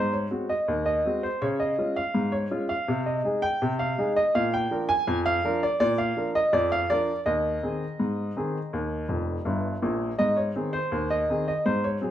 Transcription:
Already playing: G#2 C5
0.13 C#5
0.31 G#3 C4 F#4
0.49 D#5
0.68 D#2
0.86 D#5
1.05 G#3 C4 F#4
1.23 C5
1.42 C#3 C#5
1.60 D#5
1.78 G#3 C#4 F4
1.96 F5
2.15 G#2
2.32 C#5
2.51 G#3 C#4 F4
2.69 F5
2.88 C3
3.06 D#5
3.25 G#3 D#4 G#4
3.42 G5
3.62 C3
3.79 F5
3.98 G#3 D#4 G#4
4.16 D#5
4.35 A#2 F5
4.54 G5
4.71 F3 D4 A#4
4.89 G#5
5.07 F2
5.26 F5
5.44 F3 D4 A#4
5.63 D5
5.80 A#2 D5
5.98 F5
6.17 F3 D4 A#4
6.35 D#5
6.53 F2 D5
6.72 F5
6.90 F3 D4 A#4 D5
7.26 D#2 D#5
7.63 D#3 C4 G#4
8.00 G#2
8.36 D#3 C4 G#4
8.73 D#2
9.08 F1 F2
9.45 G1 G2
9.82 A#1 A#2
10.19 G#2 D#5
10.37 C#5
10.55 D#3 C4 G#4
10.73 C5
10.92 D#2
11.10 D#5
11.30 D#3 C4 G#4
11.48 D#5
11.66 G#2 C5
11.84 C#5
12.02 F#3 C4 G#4

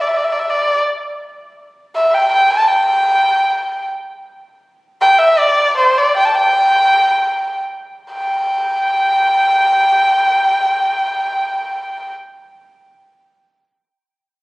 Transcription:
0.01 D5
0.08 E5
0.16 D5
0.24 E5
0.32 D5
0.40 E5
0.49 D5
1.96 E5
2.14 G5
2.32 G5
2.51 A5
2.68 G5
5.02 G5
5.18 E5
5.39 D5
5.78 C5
5.98 D5
6.17 G5
6.25 A5
6.36 G5
8.13 G5

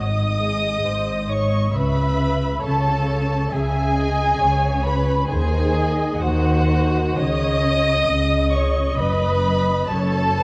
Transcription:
Already playing: G#1 G#2 D#5 D#6
0.42 G#4
0.85 G#1 G#2 C5
1.30 C#5 D#5 C#6
1.74 C#2 C#3 B4 E5 B5
2.62 C#2 C#3 A4 C#5 A5
3.52 C#2 C#3 G#4 E5 G#5
3.97 D#5
4.40 C#2 C#3 C#5
4.85 B4 B5
5.28 D#2 D#3 G#4 C5 G#5
5.77 D#5
6.20 D#2 D#3 F#4 C5 F#5
7.17 C#2 C#3 C#5 D#5 D#6
8.08 C#2 C#3 D#5
8.53 C#5 C#6
8.98 F#1 F#2 B4 B5
9.90 F#1 F#2 A4 C#5 A5
10.39 B4

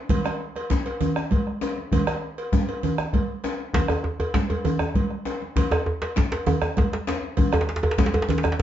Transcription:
0.09 bombo low, cowbell, high conga, low conga, djembe bass
0.24 bombo rim, cowbell, djembe slap, djembe tone
0.56 bombo rim, cowbell, high conga
0.70 bombo low, djembe slap, high conga, djembe tone
0.86 cowbell
1.01 cowbell, djembe bass, low conga
1.16 bombo rim, djembe slap, djembe tone
1.31 bombo low, cowbell, high conga
1.47 bombo rim, djembe slap
1.61 cowbell, djembe slap, djembe tone
1.78 high conga
1.92 bombo low, cowbell, high conga, djembe bass, low conga
2.07 bombo rim, cowbell, djembe slap, djembe tone, high conga
2.38 cowbell
2.52 bombo low, djembe slap, djembe tone, high conga
2.69 cowbell, djembe slap, high conga
2.83 cowbell, low conga, djembe bass
2.98 bombo rim, djembe slap, djembe tone
3.13 bombo rim, bombo low, cowbell, high conga
3.44 bombo rim, cowbell, djembe slap, djembe tone
3.59 djembe slap
3.74 bombo low, cowbell, djembe slap, high conga, djembe bass, low conga
3.88 bombo rim, cowbell, djembe slap, djembe tone
4.04 djembe tone
4.20 bombo rim, cowbell, djembe tone, high conga
4.34 bombo low, djembe slap, djembe tone, high conga
4.50 cowbell, djembe tone
4.65 cowbell, djembe tone, low conga, djembe bass
4.79 bombo rim, djembe slap, djembe tone
4.95 bombo low, cowbell, high conga
5.11 bombo rim
5.25 cowbell, djembe slap, djembe tone
5.42 high conga
5.56 bombo low, cowbell, high conga, djembe bass, low conga
5.71 bombo rim, cowbell, djembe slap, djembe tone
5.86 djembe tone
6.02 bombo rim, cowbell, djembe slap, high conga
6.16 bombo low, djembe slap, djembe tone, high conga
6.32 cowbell, djembe slap
6.47 cowbell, djembe tone, low conga, djembe bass
6.62 bombo rim, djembe slap, djembe tone
6.77 bombo low, cowbell, djembe slap, high conga
6.92 bombo rim, djembe slap
7.07 cowbell, djembe slap, djembe tone
7.23 high conga
7.37 bombo low, cowbell, high conga, low conga, djembe bass
7.52 bombo rim, cowbell, djembe slap, djembe tone
7.61 djembe slap
7.69 djembe slap
7.76 djembe slap
7.83 bombo rim, cowbell, high conga, djembe tone
7.91 djembe slap
7.98 bombo low, djembe slap, high conga, djembe tone
8.06 djembe slap
8.14 cowbell, djembe tone
8.22 djembe slap
8.28 cowbell, djembe slap, djembe bass, low conga
8.38 djembe slap
8.43 bombo rim, djembe slap, djembe tone
8.52 djembe slap

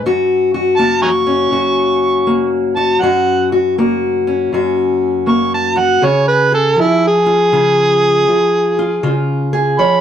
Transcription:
Already playing: F#4
0.06 F#2 F#4
0.54 F#4
0.77 A#3 F#4 A5
1.02 G#5 A#5 C#6
1.27 C#4
1.51 F#2 F#4
2.27 A#3
2.76 F#4 A5
3.01 F#2 F#4 F#5
3.52 F#4
3.78 A#3 F#4
4.27 C#4
4.53 F#2 F#4
5.27 A#3 C#6
5.54 A5
5.76 F#4 F#5
6.02 C#3 G#4 C#5
6.28 B4
6.52 G#4 A4
6.76 F3
6.81 E4
7.08 G#4
7.26 F4
7.52 C#3 F4
8.28 F3
8.79 F4
9.03 C#3 F4
9.53 G#4
9.79 F3 C#5 B5

